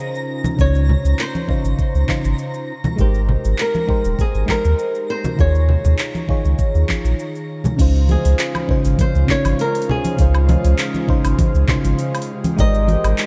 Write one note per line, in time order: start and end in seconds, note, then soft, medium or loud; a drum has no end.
0.00 0.56 C#3 medium
0.00 0.58 C#4 medium
0.00 0.59 D#4 medium
0.00 0.61 F4 medium
0.00 0.63 G#4 medium
0.00 1.50 C5 medium
0.00 7.80 A#5 medium
0.00 7.80 A#6 medium
0.15 cabasa soft
0.44 high conga medium
0.44 low conga medium
0.44 cabasa medium
0.56 0.97 C#2 medium
0.56 1.44 C#3 medium
0.56 1.45 C#4 medium
0.56 1.45 D#4 medium
0.56 kick loud
0.56 cabasa medium
0.61 1.46 F4 medium
0.61 1.20 C#5 medium
0.61 1.47 C#5 medium
0.75 cabasa soft
0.89 low conga medium
1.05 1.14 C#2 medium
1.05 cabasa medium
1.19 2.66 C5 medium
1.19 clap medium
1.19 cabasa soft
1.35 high conga medium
1.35 cabasa soft
1.48 2.05 C#3 medium
1.48 2.05 C#4 medium
1.48 2.05 D#4 medium
1.48 2.06 F4 medium
1.48 2.06 C5 loud
1.48 kick medium
1.64 1.74 G#1 medium
1.64 cabasa medium
1.79 kick loud
1.79 cabasa soft
1.94 2.04 C#2 medium
1.94 cabasa soft
2.07 2.66 C#3 medium
2.07 2.67 C#4 medium
2.07 2.67 D#4 medium
2.07 2.67 F4 medium
2.07 2.68 C5 loud
2.07 kick medium
2.07 clap medium
2.07 high conga medium
2.25 2.34 G#1 loud
2.25 cabasa medium
2.38 cabasa soft
2.54 cabasa soft
2.84 high conga medium
2.84 low conga medium
2.84 cabasa medium
2.96 3.37 G#1 loud
2.96 3.84 G#3 medium
2.96 3.85 D#4 medium
2.96 3.85 G4 medium
2.96 3.86 A#4 medium
2.96 kick loud
2.96 cabasa medium
3.00 3.61 G4 medium
3.00 3.87 C5 medium
3.14 cabasa soft
3.29 low conga medium
3.45 3.54 G#1 medium
3.45 cabasa medium
3.58 4.22 A#4 medium
3.58 clap medium
3.58 cabasa medium
3.74 high conga medium
3.74 cabasa soft
3.87 4.45 G#3 medium
3.87 4.45 D#4 medium
3.87 4.45 G4 medium
3.87 4.46 A#4 medium
3.87 4.46 C5 loud
3.87 kick medium
4.05 4.14 D#1 medium
4.05 cabasa medium
4.19 4.51 G#4 medium
4.19 kick loud
4.19 cabasa soft
4.34 4.44 G#1 loud
4.34 cabasa soft
4.46 5.34 G#3 medium
4.46 5.35 D#4 medium
4.46 5.35 G4 medium
4.46 5.36 A#4 medium
4.46 kick medium
4.46 clap medium
4.46 high conga medium
4.51 5.10 A#4 loud
4.51 5.37 C5 medium
4.65 4.74 D#2 medium
4.65 cabasa medium
4.79 cabasa soft
4.95 cabasa soft
5.10 5.40 C5 loud
5.24 high conga medium
5.24 low conga medium
5.24 cabasa medium
5.36 5.77 D#2 loud
5.36 6.24 D#3 medium
5.36 6.25 D#4 medium
5.36 6.25 F4 medium
5.36 kick loud
5.36 cabasa medium
5.40 6.26 G#4 medium
5.40 7.46 C#5 medium
5.40 6.27 C#5 medium
5.55 cabasa soft
5.69 low conga medium
5.85 5.94 D#2 medium
5.85 low conga medium
5.85 cabasa medium
5.99 clap medium
5.99 cabasa soft
6.15 high conga medium
6.15 cabasa soft
6.28 6.85 D#3 medium
6.28 6.85 D#4 medium
6.28 6.86 F4 medium
6.28 6.86 G#4 medium
6.28 6.86 C#5 loud
6.28 kick loud
6.45 6.54 C#2 medium
6.45 cabasa medium
6.59 kick loud
6.59 cabasa medium
6.75 6.84 D#2 loud
6.75 cabasa soft
6.89 kick medium
6.89 clap medium
6.89 high conga medium
7.04 7.14 A#1 medium
7.04 cabasa medium
7.19 cabasa soft
7.35 cabasa soft
7.64 high conga medium
7.64 low conga medium
7.64 cabasa medium
7.76 8.17 C#2 loud
7.76 8.64 C#3 medium
7.76 12.25 C#3 medium
7.76 13.26 G#3 medium
7.76 8.65 C#4 medium
7.76 8.66 D#4 medium
7.76 12.25 F4 medium
7.76 kick loud
7.76 open hi-hat medium
7.76 crash loud
7.76 cabasa medium
7.80 8.66 F4 medium
7.80 8.67 C5 loud
7.95 cabasa soft
8.09 9.03 G#4 medium
8.09 open hi-hat soft
8.09 high conga medium
8.25 8.35 C#2 medium
8.25 open hi-hat soft
8.25 cabasa medium
8.39 clap medium
8.39 open hi-hat medium
8.39 cabasa medium
8.55 high conga medium
8.55 cabasa soft
8.55 low woodblock medium
8.68 9.25 C#3 medium
8.68 9.25 C#4 medium
8.68 9.26 D#4 medium
8.68 9.26 F4 medium
8.68 9.26 C5 loud
8.68 kick loud
8.85 8.95 G#1 medium
8.85 open hi-hat soft
8.85 cabasa medium
8.99 9.31 C5 loud
8.99 kick loud
8.99 open hi-hat medium
8.99 high conga medium
8.99 cabasa medium
9.15 9.24 C#2 loud
9.15 cabasa soft
9.27 10.14 C#3 medium
9.27 10.15 C#4 medium
9.27 10.16 D#4 medium
9.27 10.16 F4 medium
9.27 kick medium
9.27 clap medium
9.27 open hi-hat soft
9.31 9.61 C#5 loud
9.31 10.17 C#5 loud
9.45 9.54 G#1 loud
9.45 open hi-hat soft
9.45 high conga medium
9.45 cabasa medium
9.45 low woodblock medium
9.59 9.91 A#4 medium
9.59 open hi-hat medium
9.59 cabasa medium
9.75 open hi-hat soft
9.75 cabasa soft
9.82 open hi-hat medium
9.89 10.76 G#4 medium
9.89 low conga medium
10.05 open hi-hat soft
10.05 high conga medium
10.05 cabasa medium
10.16 10.57 C#2 medium
10.16 11.04 C#3 medium
10.16 11.05 C#4 medium
10.16 11.05 D#4 medium
10.16 11.06 F4 medium
10.16 kick loud
10.16 open hi-hat medium
10.16 cabasa medium
10.22 11.07 C5 loud
10.35 cabasa soft
10.35 low woodblock medium
10.49 open hi-hat soft
10.49 high conga loud
10.49 low conga medium
10.64 10.74 C#2 medium
10.64 open hi-hat soft
10.64 cabasa medium
10.78 clap medium
10.78 open hi-hat medium
10.78 cabasa medium
10.94 high conga medium
10.94 cabasa soft
11.07 11.65 C#3 medium
11.07 11.65 C#4 medium
11.07 11.65 D#4 medium
11.07 11.66 F4 medium
11.07 11.66 C5 loud
11.07 kick loud
11.25 11.34 G#1 medium
11.25 open hi-hat soft
11.25 cabasa medium
11.25 low woodblock medium
11.39 kick loud
11.39 open hi-hat medium
11.39 high conga medium
11.39 cabasa medium
11.54 11.64 C#2 loud
11.54 cabasa soft
11.68 12.27 C#3 medium
11.68 12.27 C#4 medium
11.68 12.27 D#4 medium
11.68 12.27 F4 medium
11.68 12.28 C5 loud
11.68 kick medium
11.68 clap medium
11.68 open hi-hat soft
11.68 low conga medium
11.84 11.94 G#1 medium
11.84 open hi-hat soft
11.84 high conga medium
11.84 cabasa medium
11.99 open hi-hat medium
11.99 cabasa medium
12.15 open hi-hat soft
12.15 cabasa soft
12.15 low woodblock medium
12.22 open hi-hat medium
12.29 13.26 G4 medium
12.44 open hi-hat soft
12.44 high conga loud
12.44 cabasa medium
12.56 12.97 G#1 loud
12.56 13.26 G#3 medium
12.56 13.26 D#4 medium
12.56 13.26 G4 medium
12.56 13.26 A#4 medium
12.56 13.26 D#5 loud
12.56 kick loud
12.56 open hi-hat medium
12.56 cabasa medium
12.61 13.26 C5 loud
12.75 cabasa soft
12.88 open hi-hat soft
12.88 high conga loud
13.04 13.14 G#1 medium
13.04 open hi-hat soft
13.04 cabasa medium
13.04 low woodblock medium
13.18 clap medium
13.18 open hi-hat medium
13.18 cabasa medium